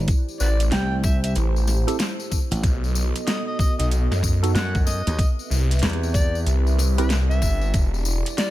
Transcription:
0.00 2.60 E4 medium
0.08 2.61 A3 medium
0.08 2.61 G4 medium
0.08 2.61 C5 medium
0.08 kick loud
0.08 closed hi-hat medium
0.08 tambourine medium
0.28 tambourine soft
0.40 0.70 A1 medium
0.40 0.47 F#4 medium
0.40 0.47 B4 medium
0.40 0.63 D5 loud
0.40 tambourine medium
0.60 closed hi-hat medium
0.60 tambourine soft
0.72 1.34 C2 loud
0.72 0.95 G5 medium
0.72 snare loud
0.72 closed hi-hat medium
0.72 tambourine medium
1.04 1.17 E5 medium
1.04 kick loud
1.04 tambourine loud
1.24 1.32 E5 medium
1.24 closed hi-hat medium
1.24 tambourine soft
1.35 1.84 A1 loud
1.35 closed hi-hat medium
1.35 tambourine medium
1.56 tambourine soft
1.67 snare soft
1.67 tambourine medium
1.87 1.96 C4 medium
1.87 1.96 E4 medium
1.87 1.96 G4 medium
1.87 1.96 A4 loud
1.87 closed hi-hat medium
1.87 tambourine soft
1.99 snare loud
1.99 closed hi-hat medium
1.99 tambourine medium
2.20 tambourine soft
2.32 kick medium
2.32 tambourine medium
2.51 2.61 A1 loud
2.51 closed hi-hat medium
2.51 tambourine soft
2.63 3.12 B1 loud
2.63 5.16 B3 medium
2.63 5.16 F#4 medium
2.63 5.16 A4 medium
2.63 5.16 D#5 medium
2.63 kick loud
2.63 closed hi-hat medium
2.63 tambourine medium
2.84 tambourine soft
2.95 tambourine medium
3.16 closed hi-hat medium
3.16 tambourine soft
3.27 3.40 D#5 medium
3.27 snare loud
3.27 closed hi-hat medium
3.27 tambourine medium
3.47 3.55 D#5 medium
3.59 3.72 D#5 medium
3.59 kick loud
3.59 tambourine medium
3.79 4.08 B1 medium
3.79 3.87 D#5 medium
3.79 closed hi-hat medium
3.79 tambourine soft
3.91 closed hi-hat medium
3.91 tambourine medium
4.11 4.53 F#2 loud
4.11 snare medium
4.11 tambourine soft
4.23 kick medium
4.23 tambourine loud
4.43 4.51 B3 medium
4.43 4.51 D#4 medium
4.43 4.51 F#4 medium
4.43 4.51 A4 loud
4.43 closed hi-hat medium
4.43 tambourine soft
4.55 5.04 F#2 loud
4.55 4.77 F#5 loud
4.55 snare loud
4.55 closed hi-hat medium
4.55 tambourine medium
4.75 kick loud
4.75 tambourine soft
4.87 5.27 D#5 medium
4.87 snare soft
4.87 tambourine loud
5.07 5.17 D#2 loud
5.07 closed hi-hat medium
5.07 tambourine soft
5.18 7.72 C4 medium
5.18 8.50 G4 medium
5.18 7.71 B4 medium
5.18 7.71 E5 medium
5.18 kick loud
5.18 closed hi-hat medium
5.18 tambourine medium
5.39 tambourine soft
5.50 5.80 C2 medium
5.50 tambourine medium
5.71 closed hi-hat medium
5.71 tambourine soft
5.79 snare loud
5.79 closed hi-hat soft
5.79 tambourine medium
5.83 6.45 E2 loud
5.83 closed hi-hat medium
5.90 closed hi-hat soft
5.93 closed hi-hat soft
6.03 tambourine soft
6.14 6.37 D5 loud
6.14 kick loud
6.14 tambourine medium
6.35 tambourine soft
6.46 7.40 C2 loud
6.46 closed hi-hat medium
6.46 tambourine medium
6.67 tambourine soft
6.78 snare soft
6.78 tambourine loud
6.98 7.07 C4 medium
6.98 7.07 E4 medium
6.98 7.06 G4 medium
6.98 7.07 B4 loud
6.98 7.14 B4 medium
6.98 closed hi-hat medium
6.98 tambourine soft
7.10 snare loud
7.10 closed hi-hat medium
7.10 tambourine medium
7.30 7.82 E5 loud
7.30 tambourine soft
7.42 7.72 G1 loud
7.42 kick medium
7.42 tambourine loud
7.61 tambourine soft
7.73 8.23 E1 medium
7.73 8.50 E4 medium
7.73 8.50 D5 medium
7.73 kick loud
7.73 closed hi-hat medium
7.73 tambourine medium
7.94 tambourine soft
8.05 tambourine medium
8.26 closed hi-hat medium
8.26 tambourine soft
8.38 8.50 D5 medium
8.38 snare loud
8.38 closed hi-hat medium
8.38 tambourine medium

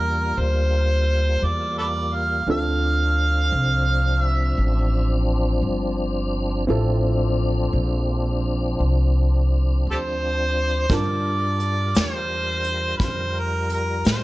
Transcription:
0.00 0.34 E2 medium
0.00 2.44 G3 medium
0.00 2.43 A#3 soft
0.00 2.44 A#3 medium
0.00 2.44 D4 soft
0.00 2.44 F4 medium
0.00 2.44 F4 soft
0.00 0.41 A#4 medium
0.00 2.45 A5 soft
0.38 1.40 D2 medium
0.38 1.45 C5 medium
1.42 2.44 E2 medium
1.42 1.77 D5 medium
1.78 1.86 A4 medium
1.78 1.86 B4 medium
1.78 2.15 D5 medium
2.14 2.48 F5 medium
2.47 3.49 D2 medium
2.47 6.65 F3 medium
2.47 6.65 C4 soft
2.47 6.65 C4 medium
2.47 6.65 D4 soft
2.47 6.65 D4 medium
2.47 6.66 F4 soft
2.47 6.66 A4 medium
2.51 4.23 F5 loud
3.52 4.55 C2 medium
4.23 5.26 E5 loud
4.58 5.60 A1 medium
5.62 6.65 G1 medium
6.67 7.71 A1 medium
6.67 10.86 F3 medium
6.67 10.85 C4 medium
6.67 10.87 C4 medium
6.67 10.86 D4 medium
6.67 10.86 E4 soft
6.67 10.86 F4 soft
6.67 10.86 A4 medium
7.73 8.75 A#1 medium
8.80 9.82 C2 medium
9.87 10.88 D2 medium
9.87 9.97 G4 medium
9.87 9.98 A4 medium
9.87 10.96 C5 medium
10.89 11.92 G2 medium
10.89 14.23 G3 medium
10.89 14.23 D4 soft
10.89 14.23 F4 medium
10.89 14.23 F4 soft
10.89 14.23 A#4 medium
10.89 14.23 A#4 soft
10.89 14.23 A5 soft
10.89 kick loud
10.89 closed hi-hat medium
10.95 12.01 D5 medium
11.60 closed hi-hat soft
11.95 12.98 E2 medium
11.95 snare medium
11.95 closed hi-hat medium
12.00 12.96 C5 medium
12.64 closed hi-hat medium
12.97 14.02 F2 medium
12.97 13.04 B4 medium
12.97 kick medium
12.97 closed hi-hat medium
13.03 13.40 C5 medium
13.39 13.72 A#4 medium
13.69 14.04 A#4 medium
13.69 closed hi-hat soft
14.05 14.23 A2 medium
14.05 14.23 C5 medium
14.05 snare medium
14.05 closed hi-hat medium

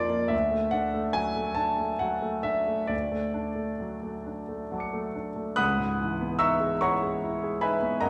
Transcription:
0.00 0.29 F2 soft
0.00 0.24 F3 soft
0.00 0.10 A#3 soft
0.00 0.35 D#4 soft
0.00 0.32 D5 medium
0.00 0.36 C6 medium
0.00 0.35 D6 loud
0.10 0.31 A#3 soft
0.28 2.87 D2 medium
0.28 0.72 E5 medium
0.51 0.85 A3 soft
0.71 1.07 D4 soft
0.71 1.14 F#5 medium
0.94 1.28 A3 soft
1.13 1.49 F#3 soft
1.13 1.57 G#5 medium
1.37 1.71 A3 soft
1.55 1.92 D4 soft
1.55 2.00 A5 medium
1.78 2.14 A3 soft
1.99 2.37 F#3 soft
1.99 2.45 F#5 medium
2.22 2.59 A3 soft
2.43 2.82 D4 soft
2.43 2.91 E5 medium
2.68 2.92 A3 soft
2.87 5.54 D2 soft
2.87 5.15 D5 medium
3.12 3.50 A3 soft
3.34 3.72 D4 soft
3.55 3.94 A3 soft
3.80 4.17 F#3 soft
4.03 4.40 A3 soft
4.26 4.63 D4 soft
4.48 4.85 A3 soft
4.71 5.08 F#3 soft
4.71 5.55 F#5 soft
4.71 5.57 A5 soft
4.77 5.58 D6 soft
4.77 5.60 C#7 soft
4.94 5.30 A3 soft
5.15 5.51 D4 soft
5.36 5.58 A3 soft
5.56 7.98 C#2 soft
5.56 6.36 F#5 medium
5.56 6.35 B5 medium
5.56 6.36 D#6 medium
5.56 6.39 F#6 medium
5.78 6.12 G#2 soft
6.01 6.33 E3 soft
6.21 6.54 B3 soft
6.39 6.73 D#4 soft
6.39 6.78 E5 medium
6.39 6.78 A#5 medium
6.39 6.78 C#6 medium
6.39 6.81 E6 medium
6.60 6.94 G#4 soft
6.81 7.15 E4 soft
6.81 7.59 C#5 medium
6.81 7.59 F#5 medium
6.81 7.59 A#5 medium
6.81 7.62 C#6 medium
7.03 7.35 G#4 soft
7.24 7.55 E4 soft
7.44 7.75 G#4 soft
7.61 7.95 D#4 soft
7.61 8.00 B4 medium
7.61 8.00 E5 medium
7.61 7.99 G#5 medium
7.61 8.02 B5 medium
7.82 8.02 B3 soft
8.00 8.10 F#2 soft
8.00 8.10 A#4 soft
8.00 8.10 D#5 medium
8.00 8.10 F#5 medium
8.00 8.10 A#5 medium

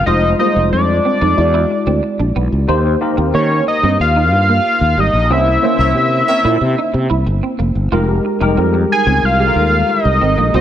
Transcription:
0.06 0.33 F1 loud
0.06 0.28 G#3 medium
0.06 0.28 D#4 medium
0.06 0.28 F4 medium
0.06 0.20 F4 medium
0.06 0.29 C5 medium
0.06 0.37 D#5 loud
0.24 muted clean electric guitar stroke soft
0.39 0.45 G3 medium
0.39 0.53 A#3 medium
0.39 1.26 D#4 medium
0.39 1.26 F4 medium
0.39 1.26 C5 medium
0.39 0.70 D#5 medium
0.45 1.29 G#3 medium
0.56 0.69 F1 medium
0.73 0.98 F2 medium
0.73 2.32 D5 medium
0.73 muted clean electric guitar stroke soft
1.05 1.18 C4 medium
1.21 1.34 F2 loud
1.21 1.34 D#4 medium
1.37 1.64 E2 loud
1.37 2.42 G#3 medium
1.37 2.42 E4 medium
1.37 2.42 F#4 medium
1.37 2.42 D5 medium
1.54 1.67 E4 medium
1.71 muted clean electric guitar stroke soft
1.87 2.00 D2 medium
1.87 2.00 C4 medium
2.03 muted clean electric guitar stroke soft
2.19 2.32 A#1 medium
2.19 2.32 D4 medium
2.36 2.49 B1 medium
2.36 2.49 B3 medium
2.52 2.65 C#2 medium
2.68 2.94 D#2 loud
2.68 2.90 A#3 medium
2.68 2.90 D#4 medium
2.68 2.82 D#4 medium
2.68 2.90 G4 medium
2.68 2.90 C5 loud
3.01 3.88 A#3 medium
3.01 3.88 D#4 medium
3.01 3.88 G4 medium
3.01 3.89 A#4 loud
3.01 muted clean electric guitar stroke soft
3.17 3.31 D#2 loud
3.17 3.30 C4 medium
3.34 3.60 D#3 medium
3.34 3.47 A#3 medium
3.34 3.65 C#5 medium
3.67 3.98 D#5 loud
3.67 muted clean electric guitar stroke soft
3.83 3.96 G2 medium
3.83 3.96 C4 medium
4.00 4.32 D#2 medium
4.00 5.01 F5 loud
4.16 4.29 D#4 medium
4.32 4.58 G2 medium
4.32 muted clean electric guitar stroke soft
4.49 4.62 A#3 medium
4.81 4.94 D#2 loud
4.97 5.10 G#1 medium
4.97 5.11 G3 medium
4.97 5.34 D#5 loud
5.13 5.30 A#1 medium
5.30 5.56 C2 loud
5.30 5.52 A#3 medium
5.30 5.44 C4 medium
5.30 5.52 C#4 medium
5.30 5.52 E4 medium
5.30 5.52 C5 medium
5.30 7.28 E5 loud
5.48 muted clean electric guitar stroke soft
5.62 6.50 A#3 medium
5.62 5.77 A#3 medium
5.62 6.50 C#4 medium
5.62 6.50 E4 medium
5.62 6.50 C5 medium
5.79 5.92 C2 medium
5.79 5.93 A#4 medium
5.79 5.93 C#5 medium
5.79 5.93 E5 medium
5.95 6.21 C3 medium
5.95 muted clean electric guitar stroke soft
6.28 6.42 C4 medium
6.28 6.50 A#4 medium
6.28 6.49 C#5 medium
6.28 6.49 E5 loud
6.45 6.58 A#2 loud
6.45 6.58 E4 medium
6.61 6.74 C3 loud
6.78 6.91 D#4 medium
6.94 7.07 C3 loud
6.94 muted clean electric guitar stroke soft
7.10 7.23 C2 medium
7.10 7.23 E4 medium
7.26 7.40 G1 medium
7.26 muted clean electric guitar stroke soft
7.43 7.56 C4 medium
7.59 7.72 F1 medium
7.59 7.72 A#3 medium
7.75 7.89 G1 medium
7.92 8.18 F1 loud
7.92 8.25 G#3 medium
7.92 8.25 D#4 medium
7.92 8.05 F4 medium
7.92 8.25 G4 medium
7.92 8.25 A#4 loud
8.25 muted clean electric guitar stroke soft
8.41 8.54 F1 medium
8.41 8.48 G3 medium
8.41 8.54 D#4 medium
8.41 9.07 D#4 medium
8.41 9.07 G4 medium
8.41 9.07 A#4 loud
8.47 9.10 G#3 medium
8.57 8.84 F2 loud
8.57 8.71 C4 medium
8.74 muted clean electric guitar stroke soft
8.92 9.27 G#5 loud
9.06 9.20 C#2 loud
9.06 9.20 C4 medium
9.22 9.49 C2 medium
9.22 9.92 F5 loud
9.22 muted clean electric guitar stroke soft
9.39 9.52 G#3 medium
9.39 10.16 G#3 medium
9.39 10.16 D#4 medium
9.39 10.16 G4 medium
9.39 9.47 A4 medium
9.47 10.19 A#4 medium
9.56 9.82 D#2 medium
9.56 9.69 A#3 medium
9.89 10.55 D#5 medium
9.89 muted clean electric guitar stroke soft
10.05 10.18 C2 medium
10.21 10.34 G#1 medium
10.21 10.34 C4 medium
10.38 10.51 A#1 medium
10.38 10.51 A#3 medium
10.54 10.61 C2 loud
10.54 10.61 A#3 medium
10.54 10.61 C4 medium
10.54 10.61 D#4 medium
10.54 10.61 F#4 medium
10.54 10.61 C5 medium
10.54 10.61 D#5 medium

